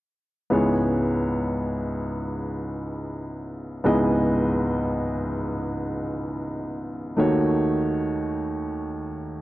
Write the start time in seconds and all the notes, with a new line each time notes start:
0.50 C#2 G#2 B3 E4 G#4 C#5
3.84 C#2 G#2 B3 E4 G#4 D#5
7.17 D#2 D#3 A3 D#4 F#4 C#5